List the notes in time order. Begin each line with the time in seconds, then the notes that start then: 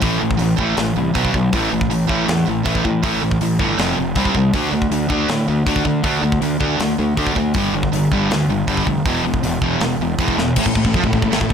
0.01 A1 A2 E3 A3, kick, open hi-hat
0.22 A1 A2 E3
0.31 kick
0.38 A1 A2 E3, open hi-hat
0.42 E3
0.58 A1 A2 E3 A3, kick
0.77 A1 A2 E3, snare, open hi-hat
0.96 C2 A2 E3
1.15 B1 B2 F#3 B3, kick, open hi-hat
1.25 kick
1.34 B1 B2 F#3, kick
1.53 A1 A2 E3 A3, kick, open hi-hat
1.73 A1 A2 E3
1.81 kick
1.90 A1 A2 E3, open hi-hat
2.08 A1 A2 E3 A3, kick
2.28 E2 A2 E3, snare, open hi-hat
2.48 A1 A2 E3
2.65 A1 A2 E3 A3, kick, open hi-hat
2.75 kick
2.85 A2 E3, kick
3.03 A1 A2 E3 A3, kick, open hi-hat
3.22 A1 A2 E3
3.31 kick
3.41 A1 A2 E3, open hi-hat
3.59 G1 A2 E3 A3, kick
3.78 F1 F2 C3 F3, snare, open hi-hat
3.98 F1 F2 C3
4.15 C2 C3 G3 C4, kick, open hi-hat
4.25 kick
4.35 C2 C3 G3, kick
4.53 D2 D3 A3 D4, kick, open hi-hat
4.72 D2 D3 A3
4.82 kick
4.91 D2 D3 A3, open hi-hat
5.10 D2 D3 A3 D4, kick
5.29 A2 D3 A3, snare, open hi-hat
5.48 D2 D3 A3
5.66 D2 D3 A3 D4, kick, open hi-hat
5.76 kick
5.85 D3 A3, kick
6.03 D2 D3 A3 D4, kick, open hi-hat
6.23 D2 D3 A3
6.32 kick
6.41 D2 D3 A3, open hi-hat
6.60 D2 D3 A3 D4, kick
6.80 D2 D3 A3, snare, open hi-hat
6.99 D2 D3 A3
7.17 D2 D3 A3 D4, kick, open hi-hat
7.27 kick
7.36 D2 D3 A3, kick
7.54 G1 G2 D3, kick, open hi-hat
7.59 G3
7.73 G1 G2 D3
7.83 kick
7.92 G1 G2 D3, open hi-hat
8.12 G1 G2 D3 G3, kick
8.30 D2 G2 D3, snare, open hi-hat
8.49 G1 G2 D3
8.67 G1 G2 D3 G3, kick, open hi-hat
8.77 kick
8.87 F1 G2 D3, kick
9.05 E1 E2 B2 E3, kick, open hi-hat
9.25 E1 E2 B2
9.34 kick
9.44 E1 E2 B2, open hi-hat
9.61 E1 E2 B2 E3, kick
9.80 E1 E2 B2, snare, open hi-hat
10.00 E1 E2 B2
10.18 E1 E2 B2 E3, kick, open hi-hat
10.28 kick
10.38 E1 E2 B2, snare
10.56 A1 A2 A3 E4 A4, kick, crash
10.66 A1 A2, kick
10.75 A1 A2, kick
10.85 A1 A2, kick
10.94 F2 F3, kick, crash
11.03 A1 A2, kick
11.12 A1 A2, kick
11.22 A1 A2, kick
11.31 A1 A2, snare, crash
11.41 A1 A2, kick
11.49 A1 A2, kick